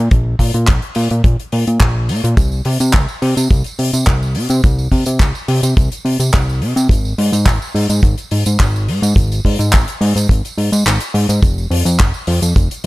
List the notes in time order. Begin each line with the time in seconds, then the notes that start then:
0.11 A#1, kick, closed hi-hat
0.39 A#2, kick, open hi-hat
0.54 A#2, closed hi-hat
0.67 A#1, kick, clap, closed hi-hat
0.82 closed hi-hat
0.95 A#2, open hi-hat
1.11 A#2, closed hi-hat
1.24 A#1, kick, closed hi-hat
1.40 closed hi-hat
1.52 A#2, open hi-hat
1.67 A#2, closed hi-hat
1.80 A#1, kick, clap, closed hi-hat
2.09 A#2, open hi-hat
2.24 A#2, closed hi-hat
2.37 C2, kick, closed hi-hat, tambourine
2.52 tambourine
2.65 C3, open hi-hat
2.80 C3, closed hi-hat, tambourine
2.93 C2, kick, clap, closed hi-hat
3.08 tambourine
3.22 C3, open hi-hat
3.37 C3, closed hi-hat, tambourine
3.50 C2, kick, closed hi-hat, tambourine
3.64 closed hi-hat, tambourine
3.79 C3, open hi-hat
3.93 C3, closed hi-hat, tambourine
4.06 C2, kick, clap, closed hi-hat
4.23 tambourine
4.35 C3, open hi-hat
4.49 C3, closed hi-hat, tambourine
4.64 C2, kick, closed hi-hat, tambourine
4.79 tambourine
4.92 C3, kick, open hi-hat
5.06 C3, closed hi-hat, tambourine
5.20 C2, kick, clap, closed hi-hat, tambourine
5.35 tambourine
5.48 C3, open hi-hat
5.63 C3, closed hi-hat, tambourine
5.77 C2, kick, closed hi-hat, tambourine
5.92 closed hi-hat, tambourine
6.05 C3, open hi-hat
6.19 C3, closed hi-hat, tambourine
6.34 C2, kick, clap, closed hi-hat
6.49 tambourine
6.61 C3, open hi-hat
6.76 C3, closed hi-hat, tambourine
6.89 G#1, kick, closed hi-hat, tambourine
7.05 tambourine
7.18 G#2, open hi-hat
7.32 G#2, closed hi-hat, tambourine
7.46 G#1, kick, clap, closed hi-hat
7.62 tambourine
7.75 G#2, open hi-hat
7.89 G#2, closed hi-hat, tambourine
8.03 G#1, kick, closed hi-hat, tambourine
8.18 closed hi-hat, tambourine
8.31 G#2, open hi-hat
8.46 G#2, closed hi-hat, tambourine
8.60 G#1, kick, clap, closed hi-hat, tambourine
8.76 tambourine
8.88 G#2, open hi-hat
9.02 G#2, closed hi-hat, tambourine
9.16 G#1, kick, closed hi-hat, tambourine
9.32 closed hi-hat, tambourine
9.45 G#2, kick, open hi-hat
9.59 G#2, closed hi-hat, tambourine
9.73 G#1, kick, clap, closed hi-hat, tambourine
9.88 closed hi-hat, tambourine
10.01 G#2, open hi-hat
10.16 G#2, closed hi-hat, tambourine
10.29 G#1, kick, closed hi-hat
10.45 closed hi-hat, tambourine
10.58 G#2, open hi-hat
10.72 G#2, closed hi-hat, tambourine
10.86 G#1, clap, closed hi-hat, tambourine
11.00 closed hi-hat, tambourine
11.14 G#2, open hi-hat
11.29 G#2, closed hi-hat, tambourine
11.42 F1, kick, closed hi-hat, tambourine
11.58 tambourine
11.70 F2, open hi-hat
11.85 F2, closed hi-hat, tambourine
11.99 F1, kick, clap, closed hi-hat
12.14 tambourine
12.27 F2, open hi-hat
12.42 F2, closed hi-hat, tambourine
12.56 F1, kick, closed hi-hat
12.71 closed hi-hat, tambourine